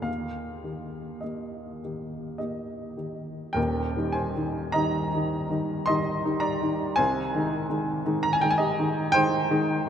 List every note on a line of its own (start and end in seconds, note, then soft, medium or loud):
0.02 3.50 D#2 soft
0.02 1.22 F5 medium
0.64 1.20 D#3 soft
0.64 1.21 G4 soft
1.21 1.80 A#3 soft
1.21 1.80 G4 soft
1.21 2.37 D#5 soft
1.85 2.38 D#3 soft
1.85 2.38 G4 soft
2.38 2.94 A#3 soft
2.38 2.94 G4 soft
2.38 3.55 D#5 soft
2.97 3.52 D#3 soft
2.97 3.52 G4 soft
3.53 3.94 D#1 medium
3.53 3.95 D#2 medium
3.53 4.11 A#4 medium
3.53 4.15 G5 medium
3.96 4.32 D#3 soft
3.96 4.33 G3 soft
3.96 4.33 D#4 soft
4.12 4.70 C5 medium
4.12 4.74 G#5 medium
4.36 4.71 D#3 soft
4.36 4.71 G3 soft
4.36 4.72 D#4 soft
4.72 5.09 D#3 medium
4.72 5.10 G3 soft
4.72 5.10 D#4 soft
4.72 5.84 D#5 medium
4.72 5.87 A#5 medium
5.14 5.48 D#3 soft
5.14 5.48 G3 soft
5.14 5.48 D#4 soft
5.50 5.84 D#3 soft
5.50 5.85 G3 soft
5.50 5.85 D#4 soft
5.86 6.22 D#3 soft
5.86 6.22 G3 medium
5.86 6.22 D#4 medium
5.86 6.40 D#5 medium
5.86 6.43 C6 medium
6.25 6.59 D#3 medium
6.25 6.58 G3 medium
6.25 6.59 D#4 medium
6.40 6.93 D5 medium
6.40 6.97 A#5 medium
6.62 6.95 D#3 medium
6.62 6.95 G3 medium
6.62 6.95 D#4 medium
6.96 7.33 C2 medium
6.96 8.18 C5 medium
6.96 8.21 G#5 loud
7.35 7.67 D#3 medium
7.35 7.66 G#3 soft
7.35 7.67 D#4 medium
7.69 8.02 D#3 soft
7.69 8.02 G#3 soft
7.69 8.02 D#4 soft
8.06 8.38 D#3 medium
8.06 8.38 G#3 medium
8.06 8.38 D#4 medium
8.23 8.32 A#5 medium
8.33 8.42 G#5 medium
8.41 8.75 D#3 medium
8.41 8.75 G#3 medium
8.41 8.75 D#4 medium
8.41 8.51 G5 medium
8.51 8.60 G#5 loud
8.58 9.11 G4 medium
8.58 9.13 D#5 medium
8.79 9.12 D#3 medium
8.79 9.12 G#3 soft
8.79 9.12 D#4 medium
9.12 9.48 D#3 medium
9.12 9.48 G#3 medium
9.12 9.48 D#4 medium
9.12 9.89 C5 medium
9.12 9.89 G5 loud
9.51 9.84 D#3 medium
9.51 9.84 G#3 medium
9.51 9.84 D#4 medium